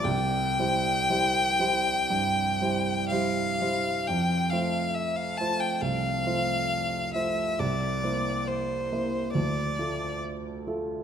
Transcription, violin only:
X:1
M:4/4
L:1/16
Q:1/4=68
K:F
V:1 name="Violin"
g12 f4 | g2 f2 e f a g f6 e2 | d4 c4 d4 z4 |]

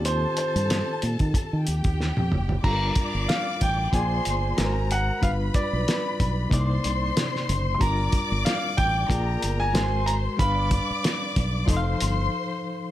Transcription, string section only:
X:1
M:4/4
L:1/8
Q:"Swing 16ths" 1/4=93
K:Gm
V:1 name="String section"
[Aa]4- [Aa] [Gg]3 | [dd']4 [cc']2 [Bb]2 | [=B=b]4 [cc']4 | [dd']4 [Bb]2 [cc']2 |
[dd']4 [cc']4 |]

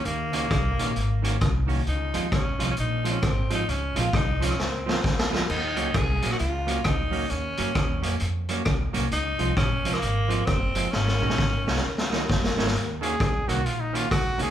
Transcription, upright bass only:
X:1
M:4/4
L:1/8
Q:"Swing" 1/4=132
K:Db
V:1 name="Upright bass" clef=bass
E,, D,, C,, B,,, A,,,2 C,,2 | D,, E,, D,, C,, B,,,2 A,,,2 | D,, B,,, C,,2 D,,2 D,,2 | E,, D,, C,, B,,, D,,2 D,,2 |
E,, G,, E,, F,, F,,2 D,, C,, | D,, C,, B,,, C,, A,,,2 G,,,2 | A,,, B,,, A,,, C,, D,,2 G,,, A,,, | E,,2 D,, C,, B,,,2 D,, D,, |]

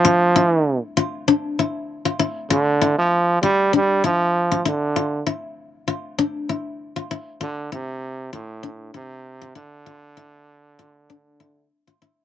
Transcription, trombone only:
X:1
M:4/4
L:1/16
Q:"Swing 16ths" 1/4=98
K:Dm
V:1 name="Trombone" clef=bass
F,4- F, z8 z3 | D,3 F,3 G,2 G,2 F,4 D,2- | D,2 z12 z2 | D,2 C,4 A,,4 C,4 D,2- |
D,12 z4 |]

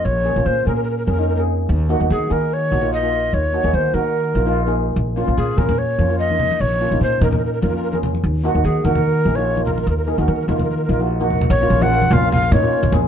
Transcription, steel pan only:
X:1
M:4/4
L:1/16
Q:"Swing 16ths" 1/4=147
K:Bbm
V:1 name="Steel pan"
z2 [B,DA] [B,DF]2 z [B,DA]2 z2 [B,DA] [B,DE] z [B,DA]3 | z2 [B,EG] [B,EG]2 z [B,EA]2 z2 [B,EG] [B,EF] z [B,EF]3 | z2 [B,EG] [B,EA]2 z [B,EG]2 z2 [B,EF] [B,EF] z [B,EA]3 | z2 [B,DF] [B,DF]2 z [B,DA]2 z2 [B,DF] [B,DF] z [B,DE]3 |
z2 [B,DF] [B,DE]2 z [B,DE]2 z2 [B,DF] [B,DF] z [B,DA]3 | z2 [B,EG] [B,EG]2 z [B,EG]2 z2 [B,EA] [B,EF] z [B,EF]3 | z2 [B,EA] [B,EG]2 z [B,EF]2 z2 [B,EF] [B,EG] z [B,EG]3 | z [B,DF] z [B,DF]2 z [B,DF]2 z2 [B,DE] [B,DF]2 z [B,DA]2 |]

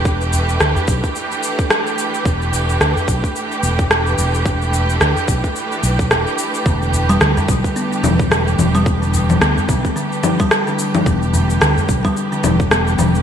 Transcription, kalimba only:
X:1
M:4/4
L:1/16
Q:"Swing 16ths" 1/4=109
K:Em
V:1 name="Kalimba" clef=bass
z16 | z16 | z16 | D, z2 G,2 D,3 B,2 D, z D, z2 G,- |
G, D,3 B,2 D, z D, z2 G,2 D,3 | B,2 D, z D, z2 G,2 D,3 B,2 D, z |]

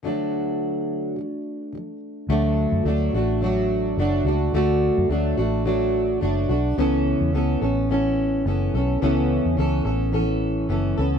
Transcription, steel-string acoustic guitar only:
X:1
M:4/4
L:1/8
Q:"Swing 16ths" 1/4=107
K:Dlyd
V:1 name="Steel-string acoustic guitar"
[D,F,A,DF]4 [D,F,] z [D,F,] z | [D,F,A,DF]2 [F,A,DF] [A,DF] [F,A,DF]2 [F,A,DF] [A,DF] | [D,F,A,DF]2 [F,A,DF] [A,DF] [F,A,DF]2 [F,A,DF] [A,DF] | [C,E,B,CA]2 [E,B,CA] [B,CA] [E,B,CA]2 [E,B,CA] [B,CA] |
[C,E,B,CA]2 [E,B,CA] [B,CA] [E,B,CA]2 [E,B,CA] [B,CA] |]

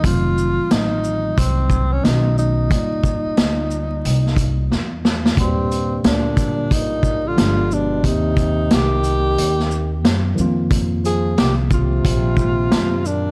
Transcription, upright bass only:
X:1
M:4/4
L:1/16
Q:"Swing 16ths" 1/4=90
K:Eb
V:1 name="Upright bass" clef=bass
F,,,3 z =A,,,4 C,,4 =B,,,4 | z4 D,,4 C,,4 _F,,4 | E,,4 D,,4 B,,,4 G,,,4 | E,,4 C,,4 E,,4 _G,,2 F,,2- |
F,,4 C,,4 B,,,4 _G,,4 |]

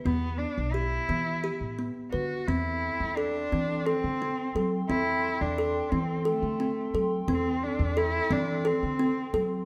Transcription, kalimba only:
X:1
M:7/8
L:1/8
Q:1/4=87
K:Ador
V:1 name="Kalimba"
B,2 G B, G B, B | C2 A C A C A | C2 A C A C A | C2 A C A C A |]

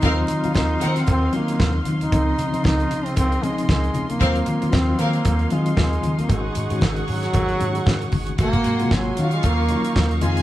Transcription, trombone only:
X:1
M:4/4
L:1/16
Q:"Swing 16ths" 1/4=115
K:Ebdor
V:1 name="Trombone"
E4 E3 C C2 B,3 z2 E- | E4 E3 C C2 A,2 A,3 B,- | B,4 C2 B,4 A,2 A,3 B, | A,4 z2 G,8 z2 |
B,4 G,3 A, B,6 z2 |]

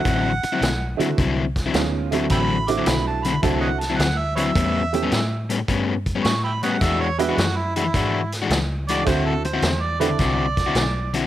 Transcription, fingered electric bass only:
X:1
M:4/4
L:1/8
Q:"Swing" 1/4=106
K:D
V:1 name="Fingered electric bass" clef=bass
A,,, z B,,, z =C,,2 D,,2 | A,,,2 B,,,2 =C,,2 D,,2 | E,,2 A,,2 G,,2 A,,2 | E,,2 F,,2 ^G,,2 C,,2 |
D,,2 E,,2 =C,,2 B,,,2 |]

